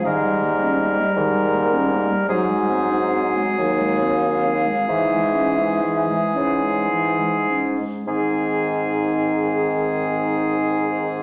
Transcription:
0.05 0.98 G#2 soft
0.05 0.26 D#3 soft
0.05 2.25 G3 soft
0.05 2.25 A#4 soft
0.05 1.17 D#5 medium
0.24 0.45 G3 soft
0.43 0.63 A#3 soft
0.62 0.82 C#4 soft
0.80 0.99 A#3 soft
0.98 1.18 G3 soft
1.16 2.09 G#2 soft
1.16 1.35 D#3 soft
1.16 1.97 A#4 medium
1.34 1.55 G3 soft
1.54 1.74 A#3 soft
1.72 1.92 C#4 soft
1.91 2.11 A#3 soft
2.10 2.29 G3 soft
2.29 3.36 G#2 soft
2.29 4.52 F#3 soft
2.29 2.51 F#3 soft
2.29 7.56 G#4 soft
2.29 3.24 C5 medium
2.50 2.72 G#3 soft
2.70 2.93 C4 soft
2.92 3.15 D#4 soft
3.14 3.37 C4 soft
3.35 3.59 G#3 soft
3.57 4.66 D#2 soft
3.57 3.81 F#3 soft
3.57 4.90 F5 medium
3.79 4.02 G#3 soft
4.01 4.24 C4 soft
4.22 4.45 D#4 soft
4.44 4.67 C4 soft
4.66 4.87 G#3 soft
4.88 6.10 G#2 soft
4.88 5.13 E3 soft
4.88 7.56 E3 soft
4.88 6.38 E5 soft
5.11 5.36 G#3 soft
5.34 5.60 C#4 soft
5.58 5.84 G#3 soft
5.82 6.09 E3 soft
6.07 6.35 G#3 soft
6.34 7.80 G#2 soft
6.34 6.64 C#4 soft
6.34 6.91 C#5 soft
6.62 6.91 G#3 soft
6.90 7.20 E3 soft
7.19 7.51 G#3 soft
7.49 7.80 C#4 soft
7.79 8.07 G#3 soft
8.07 11.23 G#2 soft
8.07 11.23 D#3 soft
8.07 11.23 C4 soft
8.07 11.23 G#4 soft

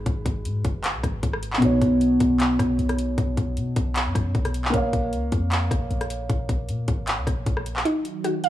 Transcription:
0.00 1.57 G#3 medium
0.00 1.58 D#4 medium
0.00 1.59 F#4 medium
0.00 1.60 B4 medium
0.06 0.25 G#1 loud
0.06 kick loud
0.06 closed hi-hat medium
0.26 0.47 G#1 loud
0.26 kick medium
0.26 closed hi-hat medium
0.45 0.64 G#2 loud
0.45 closed hi-hat medium
0.65 0.96 F#1 loud
0.65 kick loud
0.65 closed hi-hat medium
0.84 clap loud
0.84 closed hi-hat medium
0.94 1.03 B1 loud
1.03 1.22 G#1 loud
1.03 kick loud
1.03 cross-stick medium
1.03 closed hi-hat medium
1.23 1.60 G#1 loud
1.23 kick medium
1.23 closed hi-hat medium
1.33 cross-stick loud
1.43 closed hi-hat medium
1.53 clap loud
1.58 1.81 B1 loud
1.58 4.68 B2 medium
1.58 4.69 B3 medium
1.62 4.70 D#4 medium
1.62 4.71 C#5 medium
1.62 kick loud
1.62 closed hi-hat medium
1.82 2.19 B1 loud
1.82 kick medium
1.82 closed hi-hat medium
2.01 closed hi-hat medium
2.20 2.58 B1 loud
2.20 kick loud
2.20 closed hi-hat medium
2.40 clap loud
2.40 closed hi-hat medium
2.59 2.78 B1 loud
2.59 kick medium
2.59 cross-stick medium
2.59 closed hi-hat medium
2.79 3.16 B1 loud
2.79 closed hi-hat soft
2.89 cross-stick medium
2.89 closed hi-hat medium
2.99 closed hi-hat medium
3.18 3.37 B1 loud
3.18 kick loud
3.18 closed hi-hat medium
3.37 3.58 B1 loud
3.37 kick medium
3.37 closed hi-hat medium
3.57 3.75 B2 loud
3.57 closed hi-hat medium
3.76 4.08 B1 loud
3.76 kick loud
3.76 closed hi-hat medium
3.96 clap loud
3.96 closed hi-hat medium
4.06 4.15 F#2 loud
4.15 4.34 F#2 loud
4.15 kick medium
4.15 cross-stick medium
4.15 closed hi-hat medium
4.35 4.72 B1 loud
4.35 kick medium
4.35 closed hi-hat soft
4.45 cross-stick medium
4.45 closed hi-hat medium
4.54 closed hi-hat medium
4.65 clap loud
4.70 4.92 A#1 loud
4.70 7.80 A#3 medium
4.70 7.81 A#4 medium
4.70 kick loud
4.70 closed hi-hat medium
4.75 7.82 C#5 medium
4.75 7.83 F5 medium
4.93 5.14 A#1 loud
4.93 kick medium
4.93 closed hi-hat medium
5.13 5.31 C#2 loud
5.13 closed hi-hat medium
5.32 5.70 F2 loud
5.32 kick loud
5.32 closed hi-hat medium
5.52 clap loud
5.52 closed hi-hat medium
5.71 5.90 A#1 loud
5.71 kick loud
5.71 cross-stick medium
5.71 closed hi-hat medium
5.91 6.28 A#1 loud
5.91 closed hi-hat soft
6.01 cross-stick medium
6.01 closed hi-hat medium
6.10 closed hi-hat medium
6.30 6.48 A#1 loud
6.30 kick loud
6.30 closed hi-hat medium
6.49 6.70 A#1 loud
6.49 kick medium
6.49 closed hi-hat medium
6.69 6.87 A#2 loud
6.69 closed hi-hat medium
6.88 7.19 G#1 loud
6.88 kick loud
6.88 closed hi-hat medium
7.07 clap loud
7.07 closed hi-hat medium
7.18 7.26 C#2 loud
7.27 7.46 A#1 loud
7.27 kick loud
7.27 cross-stick medium
7.27 closed hi-hat medium
7.46 7.84 A#1 loud
7.46 kick medium
7.46 closed hi-hat medium
7.57 cross-stick medium
7.66 closed hi-hat medium
7.76 clap loud
7.85 8.49 D#3 medium
7.85 8.49 F#3 medium
7.85 8.49 D#4 medium
7.85 8.49 F#4 medium
7.85 closed hi-hat medium
8.05 closed hi-hat medium
8.24 8.49 F#4 medium
8.24 closed hi-hat medium
8.44 8.49 F5 loud
8.44 closed hi-hat medium

